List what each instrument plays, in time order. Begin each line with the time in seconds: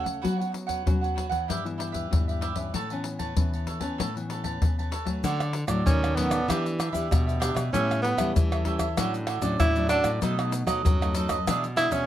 Already playing: nylon-string guitar C#3 A3 C#4 A4
0.03 cavaquinho A4 C#5 F#5, pandeiro, surdo
0.22 nylon-string guitar F#3 B3 C#4 F#4, cavaquinho F#4 B4 C#5 F#5, pandeiro, surdo
0.38 nylon-string guitar B3 C#4 F#4, cavaquinho B4 C#5 F#5, pandeiro
0.52 muted cavaquinho stroke, pandeiro
0.67 cavaquinho B4 C#5 F#5, pandeiro, surdo
0.86 nylon-string guitar F#3 B3 C#4 F#4, pandeiro, surdo
1.01 cavaquinho B4 C#5 F#5, pandeiro
1.15 cavaquinho F#4 B4 C#5 F#5, pandeiro, surdo
1.29 nylon-string guitar E3 B3 E4, cavaquinho B4 C#5 F#5, pandeiro, surdo
1.48 nylon-string guitar G2, cavaquinho E4 G4 B4 E5, pandeiro, surdo
1.65 nylon-string guitar E3 B3 E4, muted cavaquinho stroke, pandeiro
1.78 cavaquinho E4 G4 B4 E5, pandeiro
1.92 cavaquinho G4 B4 E5, pandeiro, surdo
2.10 nylon-string guitar G2 E3 B3 E4, pandeiro, surdo
2.28 cavaquinho G4 B4 E5, pandeiro
2.41 cavaquinho E4 G4 B4 E5, pandeiro
2.55 nylon-string guitar E3 B3 C#4, cavaquinho G4 B4 E5, pandeiro, surdo
2.74 nylon-string guitar A2, cavaquinho A4 B4 C#5 A5, pandeiro, surdo
2.90 nylon-string guitar E3 B3 C#4, cavaquinho B4 C#5 A5, pandeiro
3.04 muted cavaquinho stroke, pandeiro
3.19 cavaquinho B4 C#5 A5, pandeiro, surdo
3.37 nylon-string guitar E3 B3 C#4, pandeiro, surdo
3.53 cavaquinho B4 C#5 A5, pandeiro
3.67 cavaquinho A4 B4 C#5 A5, pandeiro, surdo
3.80 nylon-string guitar E3 B3 C#4, cavaquinho B4 C#5 A5, pandeiro, surdo
3.98 nylon-string guitar A2, cavaquinho A4 B4 C#5 A5, pandeiro, surdo
4.15 nylon-string guitar E3 B3 C#4, muted cavaquinho stroke, pandeiro
4.30 cavaquinho A4 B4 C#5 A5, pandeiro
4.44 cavaquinho B4 C#5 A5, pandeiro, surdo
4.62 nylon-string guitar E3 B3 C#4, pandeiro, surdo
4.79 cavaquinho B4 C#5 A5, pandeiro
4.91 cavaquinho A4 B4 C#5 A5, pandeiro
5.05 nylon-string guitar F#3 A3 C#4, cavaquinho B4 C#5 A5, pandeiro, surdo
5.24 nylon-string guitar D3, cavaquinho F#4 A4 C#5 D5, pandeiro, shaker, surdo
5.39 cavaquinho A4 C#5 D5, pandeiro, tamborim, shaker
5.53 muted cavaquinho stroke, pandeiro
5.67 nylon-string guitar A2 F#3 A3, cavaquinho A4 C#5 D5, pandeiro, tamborim, shaker, surdo
5.86 nylon-string guitar A2 D#3, tenor saxophone C#4, pandeiro, shaker, surdo
6.03 cavaquinho A4 C#5 D5, pandeiro, tamborim, shaker
6.16 nylon-string guitar F#3 A3 C#4, tenor saxophone B3, cavaquinho F#4 A4 C#5 D5, pandeiro, surdo
6.30 cavaquinho A4 C#5 D5, pandeiro, tamborim, shaker, surdo
6.48 nylon-string guitar E3 B3 D4 G4, cavaquinho D4 G4 B4 E5, pandeiro, tamborim, shaker, surdo
6.66 muted cavaquinho stroke, pandeiro, shaker
6.78 cavaquinho D4 G4 B4 E5, pandeiro, tamborim, shaker
6.92 nylon-string guitar E3 B3 D4 G4, cavaquinho G4 B4 E5, pandeiro, shaker, surdo
7.11 nylon-string guitar B2, pandeiro, tamborim, shaker, surdo
7.27 cavaquinho G4 B4 E5, pandeiro, shaker
7.40 nylon-string guitar B3 D4 G4, cavaquinho D4 G4 B4 E5, pandeiro, tamborim, shaker
7.54 nylon-string guitar B2, cavaquinho G4 B4 E5, pandeiro, tamborim, shaker, surdo
7.73 nylon-string guitar A2 G3 C#4 E4, tenor saxophone C#4, cavaquinho G4 A4 C#5 E5, pandeiro, shaker, surdo
7.89 cavaquinho A4 C#5 E5, pandeiro, tamborim, shaker
8.02 tenor saxophone B3, pandeiro
8.17 nylon-string guitar E3 G3 C#4 E4, cavaquinho A4 C#5 E5, pandeiro, tamborim, shaker, surdo
8.36 nylon-string guitar E3, pandeiro, shaker, surdo
8.52 cavaquinho A4 C#5 E5, pandeiro, tamborim, shaker
8.65 nylon-string guitar G3 C#4 E4, cavaquinho G4 A4 C#5 E5, pandeiro, surdo
8.79 cavaquinho A4 C#5 E5, pandeiro, tamborim, shaker, surdo
8.97 nylon-string guitar A2 F#3 C#4 D4, cavaquinho F#4 A4 C#5 D5, pandeiro, tamborim, shaker, surdo
9.14 muted cavaquinho stroke, pandeiro, shaker
9.27 cavaquinho F#4 A4 C#5 D5, pandeiro, tamborim
9.42 nylon-string guitar A2 F#3 C#4 D4, cavaquinho A4 C#5 D5, pandeiro, shaker, surdo
9.60 nylon-string guitar A2, tenor saxophone E4, pandeiro, tamborim, shaker, surdo
9.76 nylon-string guitar F#3 C#4 D4, cavaquinho A4 C#5 D5, pandeiro, shaker
9.89 tenor saxophone D4, cavaquinho F#4 A4 C#5 D5, pandeiro, tamborim, shaker
10.04 nylon-string guitar A2, cavaquinho A4 C#5 D5, pandeiro, tamborim, shaker, surdo
10.22 nylon-string guitar B2 F#3 A3 D#4, cavaquinho D#4 A4 B4 D#5, pandeiro, shaker, surdo
10.39 nylon-string guitar F#3 A3 D#4, cavaquinho A4 B4 D#5, pandeiro, tamborim, shaker
10.52 muted cavaquinho stroke, pandeiro, shaker
10.67 nylon-string guitar F#3, cavaquinho A4 B4 D#5, pandeiro, tamborim, shaker, surdo
10.84 nylon-string guitar F#2 F#3, pandeiro, shaker, surdo
11.01 nylon-string guitar F#3 A3 D#4, cavaquinho A4 B4 D#5, pandeiro, tamborim, shaker
11.15 nylon-string guitar F#3 A3 D#4, cavaquinho D#4 A4 B4 D#5, pandeiro, shaker
11.29 cavaquinho A4 B4 D#5, pandeiro, tamborim, shaker, surdo
11.47 nylon-string guitar B2 E3 G#3 D4, cavaquinho D4 G#4 B4 E5, pandeiro, tamborim, shaker, surdo
11.64 muted cavaquinho stroke, pandeiro, shaker
11.77 nylon-string guitar E3 G#3 D4, cavaquinho D4 G#4 B4 E5, tenor saxophone E4, pandeiro, tamborim, shaker
11.91 nylon-string guitar B2, tenor saxophone C#4, cavaquinho G#4 B4 E5, pandeiro, shaker, surdo